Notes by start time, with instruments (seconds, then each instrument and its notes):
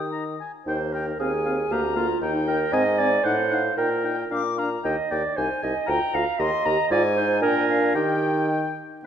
Already playing: bassoon D#3, french horn D#4, clarinet G4, flute D#6
0.12 oboe A#5
0.40 oboe G#5
0.66 bassoon D#2, french horn D#4, clarinet C5, oboe G5
0.92 french horn D#4, clarinet A#4, oboe G5
1.19 bassoon D#2, french horn C4, clarinet G#4, oboe F5, flute G#5
1.46 french horn C4, oboe F5
1.71 bassoon D2, french horn A#3, clarinet G4, oboe F5, flute A#5
1.96 french horn A#3, clarinet F4, oboe F5
2.22 bassoon D#2, clarinet D#4, french horn D#4, oboe G5, flute G5
2.47 french horn D#4, clarinet A#4, oboe G5
2.73 bassoon G#2, french horn C4, clarinet D#5, oboe G#5, flute G#5
2.98 french horn C4, clarinet D5, oboe G#5
3.24 bassoon A2, french horn D#4, clarinet C5, oboe F#5, flute F#5
3.51 french horn D#4, flute F5, oboe F#5
3.77 bassoon A#2, french horn D#4, clarinet A#4, oboe G5, flute G5
4.04 french horn D#4, oboe G5
4.30 bassoon A#2, french horn D4, oboe F5, flute D6
4.58 french horn D4, oboe F5, flute A#5
4.84 bassoon D#2, french horn D#4, clarinet D#5, oboe G5
5.11 bassoon D#2, french horn D#4, clarinet D5, oboe G5
5.37 bassoon C2, french horn D#4, clarinet C5, oboe G#5, flute G#5
5.62 bassoon C2, french horn D#4, clarinet D#5, oboe G#5
5.87 bassoon D2, french horn F4, clarinet G5, oboe A#5, flute A#5
6.13 bassoon D2, french horn F4, clarinet F5, oboe A#5
6.39 bassoon D#2, french horn G4, clarinet D#5, oboe A#5, flute C6
6.65 bassoon D#2, french horn G4, oboe A#5, flute A#5
6.91 bassoon G#2, french horn F4, clarinet D5, flute G#5, oboe G#5
7.17 french horn D#4, clarinet C5
7.42 bassoon A#2, french horn D4, clarinet A#4, flute G5, oboe G#5
7.69 flute F5
7.95 bassoon D#3, french horn D#4, clarinet G4, oboe G5, flute G5